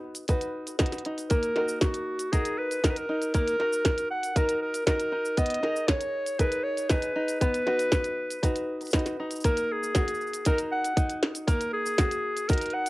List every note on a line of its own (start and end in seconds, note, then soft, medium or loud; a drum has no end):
0.00 1.30 B3 medium
0.00 0.28 D#4 medium
0.00 0.29 F#4 medium
0.00 0.29 B4 medium
0.15 closed hi-hat soft
0.15 cabasa medium
0.28 0.79 D#4 medium
0.28 0.80 F#4 medium
0.28 0.80 B4 medium
0.28 kick loud
0.28 closed hi-hat medium
0.28 cabasa medium
0.41 closed hi-hat soft
0.41 cabasa soft
0.67 closed hi-hat soft
0.67 cabasa medium
0.79 1.05 D#4 medium
0.79 1.57 F#4 medium
0.79 1.36 B4 medium
0.79 kick loud
0.79 snare medium
0.79 closed hi-hat soft
0.79 cabasa medium
0.86 closed hi-hat soft
0.92 snare soft
0.92 closed hi-hat soft
0.92 cabasa soft
0.98 closed hi-hat soft
1.05 1.56 D#4 medium
1.05 closed hi-hat soft
1.18 closed hi-hat soft
1.18 cabasa medium
1.30 3.34 A#3 medium
1.30 1.78 A#4 medium
1.30 kick loud
1.30 closed hi-hat medium
1.30 cabasa medium
1.43 closed hi-hat soft
1.43 cabasa soft
1.56 2.32 D#4 medium
1.56 2.32 F#4 medium
1.56 2.33 A#4 medium
1.56 snare soft
1.69 cabasa medium
1.81 2.33 F#4 medium
1.81 kick medium
1.81 snare medium
1.81 closed hi-hat medium
1.81 cabasa soft
1.94 closed hi-hat soft
1.94 cabasa soft
2.19 closed hi-hat soft
2.19 cabasa medium
2.32 2.83 D#4 medium
2.32 2.83 F#4 medium
2.32 2.60 G#4 medium
2.32 2.84 A#4 medium
2.32 kick medium
2.32 closed hi-hat medium
2.32 cabasa medium
2.45 closed hi-hat soft
2.45 cabasa soft
2.58 2.85 B4 medium
2.71 closed hi-hat soft
2.71 cabasa medium
2.84 3.09 D#4 medium
2.84 3.59 F#4 medium
2.84 2.91 A#4 medium
2.84 3.61 A#4 medium
2.84 kick medium
2.84 snare medium
2.84 closed hi-hat medium
2.84 cabasa soft
2.90 2.99 B4 medium
2.96 3.34 A#4 medium
2.96 closed hi-hat soft
2.96 cabasa soft
3.09 3.60 D#4 medium
3.22 closed hi-hat soft
3.22 cabasa medium
3.34 3.59 A#3 medium
3.34 4.07 A#4 loud
3.34 kick medium
3.34 closed hi-hat medium
3.34 cabasa soft
3.48 closed hi-hat soft
3.48 cabasa soft
3.60 4.36 D#4 medium
3.60 4.35 F#4 medium
3.60 4.36 A#4 medium
3.60 snare soft
3.73 cabasa medium
3.85 kick medium
3.85 snare medium
3.85 closed hi-hat medium
3.85 cabasa soft
3.98 closed hi-hat soft
3.98 cabasa soft
4.11 4.38 F#5 loud
4.23 closed hi-hat soft
4.23 cabasa medium
4.36 4.86 D#4 medium
4.36 4.86 F#4 medium
4.36 4.61 A#4 loud
4.36 4.87 A#4 medium
4.36 kick loud
4.36 closed hi-hat medium
4.36 cabasa medium
4.49 closed hi-hat soft
4.49 cabasa soft
4.62 4.85 A#4 medium
4.74 closed hi-hat soft
4.74 cabasa medium
4.86 5.12 D#4 medium
4.86 5.37 F#4 medium
4.86 5.40 A#4 loud
4.86 5.43 A#4 medium
4.86 kick medium
4.86 snare medium
4.86 closed hi-hat medium
4.86 cabasa soft
5.00 closed hi-hat soft
5.00 cabasa soft
5.12 5.62 D#4 medium
5.25 cabasa medium
5.37 5.63 B3 medium
5.37 5.89 D#5 loud
5.37 kick medium
5.37 closed hi-hat medium
5.37 cabasa medium
5.46 closed hi-hat medium
5.50 closed hi-hat soft
5.54 closed hi-hat soft
5.63 6.39 D#4 medium
5.63 6.38 G#4 medium
5.63 6.39 A#4 medium
5.63 snare soft
5.76 cabasa medium
5.87 6.40 C#5 medium
5.87 kick medium
5.87 snare loud
5.87 closed hi-hat medium
5.87 cabasa soft
6.01 closed hi-hat soft
6.01 cabasa soft
6.26 closed hi-hat soft
6.26 cabasa medium
6.39 6.90 D#4 medium
6.39 6.89 G#4 medium
6.39 6.90 A#4 medium
6.39 6.65 B4 loud
6.39 kick medium
6.39 closed hi-hat medium
6.39 cabasa soft
6.52 closed hi-hat soft
6.52 cabasa soft
6.63 6.91 C#5 medium
6.77 closed hi-hat soft
6.77 cabasa medium
6.90 7.15 D#4 medium
6.90 7.46 G#4 medium
6.90 7.40 B4 medium
6.90 kick loud
6.90 snare medium
6.90 closed hi-hat medium
6.90 cabasa soft
7.02 closed hi-hat soft
7.02 cabasa soft
7.16 7.67 D#4 medium
7.28 closed hi-hat soft
7.28 cabasa medium
7.40 9.44 B3 medium
7.40 8.89 B4 loud
7.40 kick loud
7.40 closed hi-hat medium
7.40 cabasa medium
7.54 closed hi-hat soft
7.54 cabasa soft
7.67 8.42 D#4 medium
7.67 8.43 F#4 medium
7.67 8.43 B4 medium
7.67 snare soft
7.79 closed hi-hat soft
7.79 cabasa medium
7.92 kick medium
7.92 snare medium
7.92 closed hi-hat medium
7.92 cabasa medium
8.04 closed hi-hat soft
8.04 cabasa soft
8.31 closed hi-hat soft
8.31 cabasa medium
8.43 8.93 D#4 medium
8.43 8.94 F#4 medium
8.43 8.94 B4 medium
8.43 kick medium
8.43 closed hi-hat medium
8.43 cabasa medium
8.56 closed hi-hat soft
8.56 cabasa soft
8.81 closed hi-hat soft
8.81 cabasa soft
8.85 closed hi-hat soft
8.85 cabasa soft
8.87 cabasa soft
8.91 snare medium
8.91 closed hi-hat medium
8.91 cabasa soft
8.94 9.19 D#4 medium
8.94 9.96 F#4 medium
8.94 9.50 B4 medium
8.94 kick medium
8.94 cabasa soft
8.99 closed hi-hat soft
9.06 snare soft
9.06 closed hi-hat soft
9.06 cabasa soft
9.20 10.46 D#4 medium
9.31 closed hi-hat soft
9.31 cabasa medium
9.36 cabasa soft
9.40 closed hi-hat medium
9.40 cabasa soft
9.45 11.46 A#3 medium
9.45 9.74 A#4 loud
9.45 kick loud
9.45 cabasa medium
9.57 closed hi-hat soft
9.57 cabasa soft
9.72 10.46 G#4 medium
9.83 cabasa medium
9.95 10.46 F#4 medium
9.95 kick loud
9.95 snare medium
9.95 closed hi-hat medium
9.95 cabasa medium
10.08 closed hi-hat soft
10.08 cabasa soft
10.14 cabasa soft
10.21 cabasa soft
10.27 cabasa soft
10.33 closed hi-hat soft
10.33 cabasa medium
10.45 10.96 D#4 medium
10.45 11.97 F#4 medium
10.45 10.58 A#4 loud
10.45 12.49 A#4 medium
10.45 kick loud
10.45 closed hi-hat medium
10.45 cabasa medium
10.58 closed hi-hat soft
10.58 cabasa soft
10.72 11.19 F#5 loud
10.85 closed hi-hat soft
10.85 cabasa medium
10.97 12.48 D#4 medium
10.97 kick loud
10.97 closed hi-hat medium
10.97 cabasa medium
11.10 closed hi-hat soft
11.10 cabasa soft
11.23 snare medium
11.35 closed hi-hat soft
11.35 cabasa medium
11.47 12.89 A#3 medium
11.47 11.71 A#4 medium
11.47 kick loud
11.47 closed hi-hat medium
11.47 cabasa medium
11.61 closed hi-hat soft
11.61 cabasa soft
11.73 12.50 G#4 loud
11.86 cabasa medium
11.98 12.49 F#4 medium
11.98 kick loud
11.98 snare medium
11.98 closed hi-hat medium
11.98 cabasa medium
12.11 closed hi-hat soft
12.11 cabasa soft
12.37 closed hi-hat soft
12.37 cabasa medium
12.48 12.89 D#4 medium
12.48 12.89 F#4 medium
12.48 12.75 A#4 loud
12.48 12.89 A#4 medium
12.48 kick loud
12.48 closed hi-hat medium
12.48 cabasa medium
12.53 closed hi-hat medium
12.58 closed hi-hat soft
12.61 closed hi-hat soft
12.61 cabasa soft
12.66 closed hi-hat soft
12.70 12.89 F#5 loud
12.70 closed hi-hat soft
12.86 closed hi-hat soft